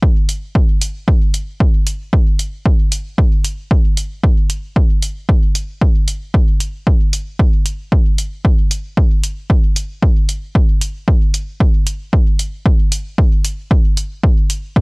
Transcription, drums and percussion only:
0.03 kick loud
0.29 closed hi-hat medium
0.55 kick loud
0.81 closed hi-hat medium
1.08 kick loud
1.34 closed hi-hat medium
1.60 kick loud
1.87 closed hi-hat medium
2.13 kick loud
2.39 closed hi-hat medium
2.66 kick loud
2.92 closed hi-hat medium
3.18 kick loud
3.45 closed hi-hat medium
3.71 kick loud
3.97 closed hi-hat medium
4.24 kick loud
4.50 closed hi-hat medium
4.76 kick loud
5.03 closed hi-hat medium
5.29 kick loud
5.55 closed hi-hat medium
5.81 kick loud
6.08 closed hi-hat medium
6.34 kick loud
6.60 closed hi-hat medium
6.87 kick loud
7.13 closed hi-hat medium
7.39 kick loud
7.66 closed hi-hat medium
7.92 kick loud
8.18 closed hi-hat medium
8.45 kick loud
8.71 closed hi-hat medium
8.97 kick loud
9.24 closed hi-hat medium
9.50 kick loud
9.76 closed hi-hat medium
10.02 kick loud
10.29 closed hi-hat medium
10.55 kick loud
10.81 closed hi-hat medium
11.08 kick loud
11.34 closed hi-hat medium
11.60 kick loud
11.87 closed hi-hat medium
12.13 kick loud
12.39 closed hi-hat medium
12.66 kick loud
12.92 closed hi-hat medium
13.18 kick loud
13.45 closed hi-hat medium
13.71 kick loud
13.97 closed hi-hat medium
14.24 kick loud
14.50 closed hi-hat medium
14.76 kick loud

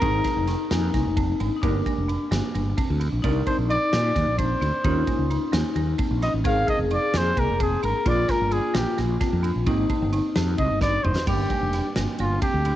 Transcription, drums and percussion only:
0.02 kick loud
0.02 ride medium
0.24 kick medium
0.24 snare soft
0.24 ride medium
0.47 snare soft
0.47 ride medium
0.71 snare loud
0.71 ride medium
0.94 kick medium
0.94 snare soft
0.94 ride medium
1.17 kick loud
1.17 ride medium
1.40 ride medium
1.63 kick loud
1.63 ride medium
1.86 kick medium
1.86 ride medium
2.09 ride medium
2.32 snare loud
2.32 ride medium
2.55 ride medium
2.78 kick loud
2.78 ride medium
3.01 ride medium
3.24 kick loud
3.24 ride medium
3.47 kick medium
3.47 ride medium
3.70 ride medium
3.93 snare loud
3.93 ride medium
4.16 kick medium
4.16 snare soft
4.16 ride medium
4.39 kick loud
4.39 ride medium
4.62 ride medium
4.84 kick loud
4.84 ride medium
5.07 kick medium
5.07 ride medium
5.31 ride medium
5.53 snare loud
5.53 ride medium
5.76 ride medium
5.98 kick loud
5.98 ride medium
6.22 snare soft
6.22 ride medium
6.45 kick loud
6.45 ride medium
6.68 kick medium
6.68 ride medium
6.91 ride medium
7.14 snare loud
7.14 ride medium
7.37 kick medium
7.37 ride medium
7.60 kick loud
7.60 ride medium
7.83 ride medium
8.06 kick loud
8.06 ride medium
8.29 kick medium
8.29 snare soft
8.29 ride medium
8.51 ride medium
8.75 snare loud
8.75 ride medium
8.98 snare soft
8.98 ride medium
9.21 kick loud
9.21 snare soft
9.21 ride medium
9.44 ride medium
9.66 kick loud
9.66 ride medium
9.90 kick medium
9.90 ride medium
10.13 ride medium
10.36 snare loud
10.36 ride medium
10.58 kick medium
10.58 ride medium
10.81 kick loud
10.81 snare medium
11.05 mid tom medium
11.16 snare medium
11.27 kick loud
11.27 ride medium
11.27 crash medium
11.50 kick medium
11.50 ride medium
11.73 snare soft
11.73 ride medium
11.96 snare loud
11.96 ride medium
12.18 ride medium
12.42 kick loud
12.42 ride medium
12.65 ride medium

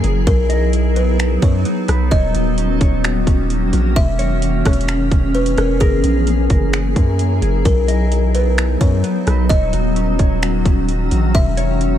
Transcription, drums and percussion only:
0.04 closed hi-hat medium
0.27 kick loud
0.27 closed hi-hat medium
0.50 closed hi-hat medium
0.73 closed hi-hat medium
0.96 closed hi-hat medium
1.20 finger snap loud
1.20 closed hi-hat medium
1.42 kick loud
1.42 closed hi-hat medium
1.65 closed hi-hat medium
1.88 cross-stick medium
1.88 closed hi-hat medium
2.12 kick loud
2.12 closed hi-hat medium
2.35 closed hi-hat medium
2.58 closed hi-hat medium
2.81 kick loud
2.81 closed hi-hat medium
3.04 finger snap loud
3.04 closed hi-hat medium
3.27 kick loud
3.27 closed hi-hat medium
3.50 closed hi-hat medium
3.73 closed hi-hat medium
3.96 kick loud
3.96 closed hi-hat medium
4.19 closed hi-hat medium
4.42 closed hi-hat medium
4.65 kick loud
4.65 cross-stick medium
4.65 closed hi-hat medium
4.73 closed hi-hat medium
4.81 closed hi-hat medium
4.88 finger snap loud
4.88 closed hi-hat medium
5.11 kick loud
5.11 closed hi-hat medium
5.34 closed hi-hat soft
5.46 closed hi-hat medium
5.58 cross-stick medium
5.58 closed hi-hat medium
5.81 kick loud
5.81 closed hi-hat medium
6.04 closed hi-hat medium
6.27 closed hi-hat medium
6.50 kick medium
6.50 closed hi-hat medium
6.73 finger snap loud
6.73 closed hi-hat medium
6.96 kick loud
6.96 closed hi-hat medium
7.19 closed hi-hat medium
7.42 closed hi-hat medium
7.65 kick loud
7.65 closed hi-hat medium
7.88 closed hi-hat medium
8.12 closed hi-hat medium
8.35 closed hi-hat medium
8.58 finger snap loud
8.58 closed hi-hat medium
8.81 kick loud
8.81 closed hi-hat medium
9.04 closed hi-hat medium
9.27 cross-stick medium
9.27 closed hi-hat medium
9.50 kick loud
9.50 closed hi-hat medium
9.73 closed hi-hat medium
9.96 closed hi-hat medium
10.19 kick medium
10.19 closed hi-hat medium
10.43 finger snap loud
10.43 closed hi-hat medium
10.65 kick loud
10.65 closed hi-hat medium
10.89 closed hi-hat medium
11.11 closed hi-hat medium
11.35 kick loud
11.35 closed hi-hat medium
11.57 closed hi-hat medium
11.81 closed hi-hat medium

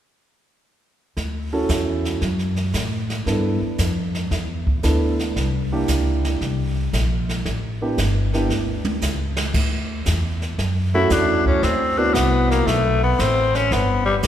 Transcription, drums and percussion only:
1.17 brush sweep soft
1.17 kick soft
1.17 snare soft
1.69 kick soft
1.69 snare soft
1.69 hi-hat pedal medium
2.05 snare soft
2.21 brush sweep soft
2.21 kick soft
2.21 snare soft
2.39 snare soft
2.56 snare soft
2.73 kick soft
2.73 snare soft
2.73 hi-hat pedal soft
3.10 snare soft
3.26 brush sweep soft
3.26 kick soft
3.26 snare soft
3.78 kick soft
3.78 snare medium
3.78 hi-hat pedal medium
4.14 snare soft
4.31 brush sweep soft
4.31 kick soft
4.31 snare soft
4.67 kick soft
4.83 kick soft
4.83 snare soft
4.83 hi-hat pedal soft
5.19 snare soft
5.36 brush sweep soft
5.36 kick soft
5.36 snare soft
5.88 kick soft
5.88 snare medium
5.88 hi-hat pedal medium
6.25 snare soft
6.41 brush sweep soft
6.41 kick soft
6.41 snare soft
6.93 kick soft
6.93 snare soft
6.93 hi-hat pedal medium
7.29 snare soft
7.45 brush sweep soft
7.45 kick soft
7.45 snare soft
7.97 kick soft
7.97 snare medium
7.97 hi-hat pedal medium
8.33 snare soft
8.50 snare soft
8.85 high tom soft
9.02 snare soft
9.02 hi-hat pedal soft
9.37 snare medium
9.54 brush sweep soft
9.54 kick medium
9.54 snare soft
9.54 crash medium
10.05 kick soft
10.05 snare medium
10.05 hi-hat pedal medium
10.42 snare soft
10.58 brush sweep soft
10.58 kick soft
10.58 snare soft
11.10 kick soft
11.10 snare soft
11.10 hi-hat pedal soft
11.46 kick soft
11.63 brush sweep soft
11.63 kick soft
11.63 snare soft
12.15 kick soft
12.15 snare medium
12.15 hi-hat pedal medium
12.51 snare soft
12.67 brush sweep soft
12.67 kick soft
12.67 snare soft
13.19 kick soft
13.19 snare medium
13.19 hi-hat pedal soft
13.55 snare soft
13.71 brush sweep soft
13.71 kick soft
13.71 snare soft
14.23 kick soft
14.23 snare medium
14.23 hi-hat pedal medium

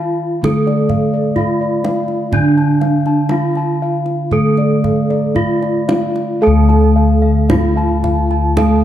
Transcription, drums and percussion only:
0.44 kendang high soft
0.44 kendang low medium
0.67 kendang slap soft
0.89 kendang low medium
1.36 kendang low soft
1.85 kendang high medium
2.08 kendang slap soft
2.33 kendang low medium
2.58 kendang slap soft
2.81 kendang high soft
3.06 kendang slap soft
3.29 kendang high medium
3.55 kendang slap soft
4.06 kendang slap soft
4.31 kendang low soft
4.57 kendang slap soft
4.84 kendang low medium
5.10 kendang slap soft
5.36 kendang low medium
5.62 kendang slap soft
5.89 kendang high medium
6.16 kendang slap soft
6.70 kendang slap soft
7.50 kendang slap soft
7.50 kendang high medium
7.50 kendang low medium
8.04 kendang slap soft
8.04 kendang low medium
8.31 kendang slap soft
8.57 kendang high medium
8.57 kendang low medium

